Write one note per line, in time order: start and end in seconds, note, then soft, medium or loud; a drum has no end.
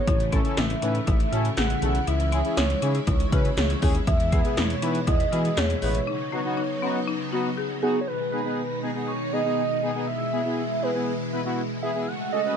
0.00 4.04 C#3 medium
0.00 0.59 C#5 loud
0.07 0.43 A1 loud
0.07 4.03 E3 medium
0.07 2.06 A3 medium
0.07 6.03 E4 medium
0.07 0.24 E4 medium
0.07 kick loud
0.07 closed hi-hat medium
0.20 closed hi-hat medium
0.32 0.41 C#4 medium
0.32 0.49 C#4 medium
0.32 0.41 E4 medium
0.32 0.41 A4 medium
0.32 kick medium
0.32 closed hi-hat medium
0.45 0.62 C#4 medium
0.45 0.62 E4 medium
0.45 0.62 A4 medium
0.45 closed hi-hat soft
0.57 0.75 A1 loud
0.57 0.74 E4 medium
0.57 1.07 E5 loud
0.57 snare loud
0.57 closed hi-hat medium
0.70 closed hi-hat medium
0.82 1.00 A2 loud
0.82 1.00 C#4 medium
0.82 0.99 D#4 medium
0.82 1.00 E4 medium
0.82 1.00 B4 medium
0.82 closed hi-hat medium
0.95 closed hi-hat soft
1.07 1.25 A1 loud
1.07 1.24 E4 medium
1.07 1.54 E5 loud
1.07 kick loud
1.07 closed hi-hat medium
1.20 closed hi-hat medium
1.32 1.50 A2 loud
1.32 1.50 C#4 medium
1.32 1.50 E4 medium
1.32 1.49 F#4 medium
1.32 1.50 A4 medium
1.32 closed hi-hat medium
1.45 closed hi-hat medium
1.57 1.75 A1 medium
1.57 1.74 G#4 medium
1.57 2.09 F#5 loud
1.57 snare loud
1.57 closed hi-hat medium
1.70 closed hi-hat medium
1.82 2.00 B1 loud
1.82 2.00 C#4 medium
1.82 2.00 E4 medium
1.82 1.99 G#4 medium
1.82 2.00 A4 medium
1.82 closed hi-hat medium
1.95 closed hi-hat medium
2.07 2.42 C#2 loud
2.07 6.03 G#3 medium
2.07 2.24 E4 medium
2.07 2.57 E5 loud
2.07 closed hi-hat medium
2.20 closed hi-hat medium
2.32 2.49 C#4 medium
2.32 2.41 C#4 medium
2.32 2.41 E4 medium
2.32 2.41 G#4 medium
2.32 closed hi-hat medium
2.45 2.62 C#4 medium
2.45 2.62 E4 medium
2.45 2.62 G#4 medium
2.45 closed hi-hat soft
2.57 2.75 C#2 medium
2.57 2.74 E4 medium
2.57 3.04 C#5 loud
2.57 snare loud
2.57 closed hi-hat medium
2.70 closed hi-hat medium
2.82 3.00 C#3 loud
2.82 3.00 C#4 medium
2.82 2.99 D#4 medium
2.82 3.00 E4 medium
2.82 3.00 G#4 medium
2.82 closed hi-hat medium
2.95 closed hi-hat soft
3.07 3.25 C#2 loud
3.07 3.24 E4 medium
3.07 3.54 C#5 loud
3.07 kick loud
3.07 closed hi-hat medium
3.20 closed hi-hat soft
3.32 3.50 C#3 loud
3.32 3.50 C#4 medium
3.32 3.50 E4 medium
3.32 3.49 F#4 medium
3.32 3.50 B4 medium
3.32 kick loud
3.32 closed hi-hat medium
3.45 closed hi-hat medium
3.57 3.75 C#2 medium
3.57 3.74 G#4 medium
3.57 3.92 C#5 loud
3.57 snare loud
3.57 closed hi-hat medium
3.70 closed hi-hat medium
3.82 4.00 D#2 loud
3.82 4.00 C#4 medium
3.82 4.00 E4 medium
3.82 3.99 G#4 medium
3.82 4.00 G#4 medium
3.82 kick loud
3.82 open hi-hat medium
3.95 closed hi-hat medium
4.07 4.42 E2 loud
4.07 6.05 B2 medium
4.07 6.05 E3 medium
4.07 4.24 E4 medium
4.07 4.59 E5 loud
4.07 kick loud
4.07 closed hi-hat medium
4.20 closed hi-hat medium
4.32 4.41 B3 medium
4.32 4.49 B3 medium
4.32 4.41 E4 medium
4.32 4.41 G#4 medium
4.32 kick medium
4.32 closed hi-hat medium
4.45 4.62 B3 medium
4.45 4.62 E4 medium
4.45 4.62 G#4 medium
4.45 closed hi-hat soft
4.57 4.75 E2 loud
4.57 4.74 E4 medium
4.57 5.07 C#5 loud
4.57 snare loud
4.57 closed hi-hat medium
4.70 closed hi-hat medium
4.82 5.00 E3 loud
4.82 5.00 B3 medium
4.82 4.99 D#4 medium
4.82 5.00 E4 medium
4.82 5.00 B4 medium
4.82 closed hi-hat medium
4.95 closed hi-hat medium
5.07 5.25 E2 loud
5.07 5.24 E4 medium
5.07 5.59 D#5 loud
5.07 kick loud
5.07 closed hi-hat medium
5.20 closed hi-hat medium
5.32 5.50 E3 loud
5.32 5.50 B3 medium
5.32 5.50 E4 medium
5.32 5.49 F#4 medium
5.32 5.50 G#4 medium
5.32 closed hi-hat medium
5.45 closed hi-hat medium
5.57 5.75 E2 medium
5.57 5.74 G#4 medium
5.57 5.82 C#5 loud
5.57 snare loud
5.57 closed hi-hat medium
5.70 closed hi-hat medium
5.82 6.00 A1 loud
5.82 6.00 B3 medium
5.82 6.00 E4 medium
5.82 5.99 G#4 medium
5.82 6.00 B4 medium
5.82 7.53 C#5 loud
5.82 open hi-hat medium
5.95 closed hi-hat medium
6.07 8.06 C#3 medium
6.07 8.06 F#3 medium
6.07 8.06 B3 medium
6.07 6.24 D#4 medium
6.07 8.06 D#4 medium
6.32 6.41 B3 medium
6.32 6.49 B3 medium
6.32 6.41 D#4 medium
6.32 6.41 F#4 medium
6.45 6.62 B3 medium
6.45 6.62 D#4 medium
6.45 6.62 F#4 medium
6.57 6.74 D#4 medium
6.82 7.00 B3 medium
6.82 6.99 C#4 medium
6.82 7.00 D#4 medium
6.82 7.00 F#4 loud
7.07 7.24 D#4 medium
7.32 7.50 B3 loud
7.32 7.50 D#4 medium
7.32 7.50 F#4 loud
7.32 7.49 F#4 medium
7.57 7.74 G#4 medium
7.82 8.00 B3 medium
7.82 8.00 D#4 medium
7.82 8.00 F#4 loud
7.82 8.00 G#4 loud
7.82 7.99 G#4 medium
8.01 8.09 C#5 medium
8.07 12.03 B2 medium
8.07 10.05 D#3 medium
8.07 12.57 G#3 medium
8.07 10.05 D#4 medium
8.07 8.32 B4 loud
8.32 8.41 B3 medium
8.32 8.41 D#4 medium
8.32 8.41 G#4 medium
8.32 8.79 B4 loud
8.45 8.62 B3 medium
8.45 8.62 D#4 medium
8.45 8.62 G#4 medium
8.82 8.91 B3 medium
8.82 8.91 D#4 medium
8.82 8.91 G#4 medium
8.95 9.12 B3 medium
8.95 9.12 D#4 medium
8.95 9.12 G#4 medium
9.07 9.34 C#5 loud
9.32 9.41 B3 medium
9.32 9.41 D#4 medium
9.32 9.41 G#4 medium
9.32 10.07 D#5 loud
9.45 9.62 B3 medium
9.45 9.62 D#4 medium
9.45 9.62 G#4 medium
9.82 9.91 B3 medium
9.82 9.91 D#4 medium
9.82 9.91 G#4 medium
9.95 10.08 B3 medium
9.95 10.07 D#4 medium
9.95 10.07 G#4 medium
10.07 12.06 E3 medium
10.07 12.06 E4 medium
10.07 10.84 E5 loud
10.32 10.41 B3 medium
10.32 10.41 E4 medium
10.32 10.41 G#4 medium
10.45 10.62 B3 medium
10.45 10.62 E4 medium
10.45 10.62 G#4 medium
10.82 10.91 B3 medium
10.82 10.91 E4 medium
10.82 10.91 G#4 medium
10.82 11.58 B4 loud
10.95 11.12 B3 medium
10.95 11.12 E4 medium
10.95 11.12 G#4 medium
11.32 11.41 B3 medium
11.32 11.41 E4 medium
11.32 11.41 B4 medium
11.45 11.62 B3 medium
11.45 11.62 E4 medium
11.45 11.62 F#4 loud
11.82 11.91 B3 medium
11.82 11.91 E4 medium
11.82 11.91 G#4 medium
11.82 12.09 E5 loud
11.95 12.07 B3 medium
11.95 12.07 E4 medium
11.95 12.07 G#4 medium
12.08 12.57 C#3 medium
12.08 12.57 A3 medium
12.08 12.57 F#4 medium
12.08 12.32 F#5 loud
12.32 12.41 C#4 medium
12.32 12.41 F#4 medium
12.32 12.41 A4 medium
12.32 12.57 D#5 loud
12.45 12.57 C#4 medium
12.45 12.57 F#4 medium
12.45 12.57 B4 medium